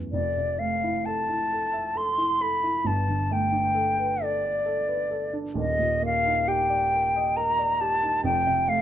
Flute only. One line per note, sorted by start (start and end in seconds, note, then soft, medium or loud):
0.13 0.60 D5 medium
0.59 1.07 F5 medium
1.06 1.99 A5 medium
1.97 2.43 C6 medium
2.42 2.88 B5 medium
2.87 3.34 A5 medium
3.33 4.25 G5 medium
4.24 5.37 D5 medium
5.59 6.03 D#5 medium
6.06 6.50 F5 medium
6.48 7.38 G5 medium
7.37 7.82 A#5 medium
7.81 8.24 A5 medium
8.25 8.70 G5 medium
8.69 8.82 F5 medium